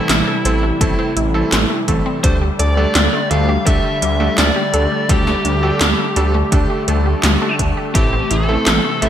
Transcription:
Already playing: C3 E3 G3 E4
0.09 A1 E4, snare, clap, closed hi-hat
0.27 A4
0.45 A1 A3 C4 E4 A4 C5, closed hi-hat
0.63 A3
0.81 A1 A3 C4 E4 A4, kick, closed hi-hat
0.99 C4
1.16 A1 E4, closed hi-hat
1.34 A3 C4 E4 A4
1.52 A1 C5, snare, clap, closed hi-hat
1.70 A3
1.88 A1 A3 C4 E4 A4, kick, closed hi-hat
2.06 C4
2.24 D2 D3 A3 D4 G4 A4 C5, kick, closed hi-hat
2.41 G4
2.59 D2 A4 D5, closed hi-hat
2.77 G3 A3 D4 G4 A4
2.95 D2 G3, snare, clap, closed hi-hat
3.13 A3
3.31 D2 A3 D4 G4 A4 F5, closed hi-hat
3.49 G4
3.66 D2 A3 D4 G4 A4 E5, kick, closed hi-hat
3.84 G3
4.02 D2 G3, closed hi-hat
4.20 A3 D4 G4 A4
4.38 D2 D4 D5, snare, clap, closed hi-hat
4.56 G4
4.74 D2 A3 D4 G4 A4, closed hi-hat
4.92 G3
5.09 D2 G3 A3 D4 G4 A4, kick, closed hi-hat
5.27 A3, snare
5.45 D2 D4, closed hi-hat
5.63 A3 D4 G4 A4
5.81 D2 A4, snare, clap, closed hi-hat
5.99 G3
6.16 D2 G3 A3 D4 G4 A4, closed hi-hat
6.34 A3
6.52 D2 A3 D4 G4 A4, kick, closed hi-hat
6.70 G4
6.88 D2 A3 D4 G4 A4, closed hi-hat
7.06 G3
7.23 D2 G3, snare, clap, closed hi-hat
7.41 A3 D4 G4 A4
7.59 D2 D4, kick, closed hi-hat
7.77 G4
7.95 A1 C3 E3 A3 C4 E4 G4 A4, kick, closed hi-hat
8.13 C4
8.30 A1 E4 A4, closed hi-hat
8.49 A3 C4 E4 A4
8.66 A1 C5, snare, clap, closed hi-hat
8.84 A3
9.02 A1 A3 C4 E4 A4 E5, closed hi-hat

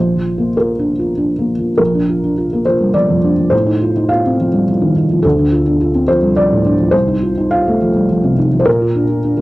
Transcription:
Already playing: A#1 C5
0.16 F3
0.38 A#3
0.57 F4 A#4
0.79 D4
0.99 F4
1.17 D4
1.39 A#3
1.59 F3
1.78 A#1 A#4
1.95 D4
2.09 F4
2.24 D4
2.38 F4
2.53 A#3
2.65 F3 C5
2.81 G3
2.94 F3 D5
3.09 F2
3.24 D4
3.38 F3
3.50 A2 C5
3.66 D#4
3.81 F4
3.97 D#4
4.09 F4 F5
4.26 C4
4.40 F3
4.54 G3
4.68 F3
4.81 D#3
4.96 D#4
5.11 F3
5.23 D2 A4
5.39 D4
5.52 F4
5.66 D4
5.81 F4
5.94 C4
6.08 F3 C5
6.23 G3
6.36 F3 D5
6.52 A2
6.66 D4
6.80 F3
6.91 C2 C5
7.08 D#4
7.22 F4
7.37 D#4
7.51 F4 F5
7.68 A3
7.82 F3
7.96 G3
8.10 F3
8.24 C3
8.39 D#4
8.53 F3
8.60 C5
8.65 A#2 A#4
8.82 F4
8.95 D4
9.09 F4
9.24 D4
9.37 A#3

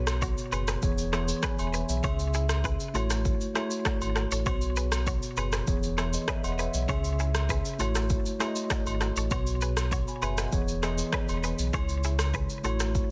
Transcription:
Already playing: B1 B2 B3 F#4 C#5
0.07 cross-stick, high agogo, shaker
0.22 F#4 C#5, kick, shaker
0.38 shaker
0.52 F#1 G#4 B4, high agogo, shaker
0.68 G#4 B4, cross-stick, shaker
0.82 E1 E3 B3 G#4 C#5, kick, shaker
0.98 shaker
1.12 E3 B3 E4 G#4 C#5, cross-stick, high agogo, shaker
1.28 shaker
1.43 G#4 B4 G#5 B5, kick, cross-stick, low woodblock, shaker
1.59 E1 E5 G#5, high agogo, shaker
1.74 G#4 B4, shaker
1.89 B1 C#5 E5, shaker
2.02 C#2 C#3 C#4 G#4 C#5 E5, kick, high agogo, shaker
2.19 shaker
2.34 E4 G#4, shaker
2.49 cross-stick, high agogo, shaker
2.64 G#4 B4, kick, shaker
2.80 shaker
2.94 A1 A3 E4 F#4 A4 C#5, high agogo, shaker
3.10 F#4 A4, cross-stick, shaker
3.25 kick, shaker
3.41 shaker
3.54 A3 E4 F#4 G#4 C#5, cross-stick, high agogo, shaker
3.71 shaker
3.85 F#4 A4, kick, cross-stick, low woodblock, shaker
4.01 G#1, high agogo, shaker
4.16 F#4 A4, cross-stick, shaker
4.32 A1 A4 C#5, shaker
4.45 B1 B2 B3 F#4 C5 C#5, kick, high agogo, shaker
4.54 C#5
4.61 shaker
4.76 G#4 B4, shaker
4.92 cross-stick, high agogo, shaker
5.07 F#4 C#5, kick, shaker
5.23 shaker
5.37 F#1 G#4 B4, high agogo, shaker
5.53 G#4 B4, cross-stick, shaker
5.66 E1 E3 B3 G#4 C#5, kick, shaker
5.83 shaker
5.98 E4 G#4, cross-stick, high agogo, shaker
6.14 B4 D#5, shaker
6.28 G#4 B4 C#5, kick, cross-stick, low woodblock, shaker
6.44 E1 D#5 F#5, high agogo, shaker
6.59 G#4 B4 C#5 E5, shaker
6.74 B1 C#5, shaker
6.88 C#2 C#3 C#4 G#4 C#5 E5, kick, high agogo, shaker
7.04 shaker
7.19 E4 G#4, shaker
7.35 cross-stick, high agogo, shaker
7.49 G#4 B4, kick, shaker
7.65 shaker
7.79 A1 A3 E4 F#4 A4 C#5, high agogo, shaker
7.95 F#4 A4, cross-stick, shaker
8.10 kick, shaker
8.26 shaker
8.39 A3 E4 F#4 G#4 C#5, cross-stick, high agogo, shaker
8.48 D#5
8.56 shaker
8.70 F#4 A4, kick, cross-stick, low woodblock, shaker
8.86 G#1, high agogo, shaker
9.01 F#4 A4, cross-stick, shaker
9.17 A1 A4 C#5, shaker
9.30 B1 B2 B3 F#4 B4 C#5, kick, high agogo, shaker
9.39 C#5
9.47 shaker
9.61 G#4 B4, shaker
9.77 cross-stick, high agogo, shaker
9.92 F#4 C#5, kick, shaker
10.08 G#5 B5, shaker
10.22 F#1 G#4 B4 E5 G#5, high agogo, shaker
10.38 G#4 B4 D#5 F#5, cross-stick, shaker
10.51 E1 E3 B3 G#4 C#5, kick, shaker
10.68 shaker
10.82 E3 B3 E4 G#4 D#5, cross-stick, high agogo, shaker
10.98 shaker
11.13 G#4 B4, kick, cross-stick, low woodblock, shaker
11.29 E1, high agogo, shaker
11.44 G#4 B4, shaker
11.59 B1, shaker
11.72 C#2 C#3 G#3 E4 G#4 C#5, kick, high agogo, shaker
11.89 shaker
12.04 E4 G#4, shaker
12.19 cross-stick, high agogo, shaker
12.34 G#4 B4, kick, shaker
12.50 shaker
12.63 A1 A3 E4 F#4 A4 C#5, high agogo, shaker
12.80 F#4 A4, cross-stick, shaker
12.95 kick, shaker

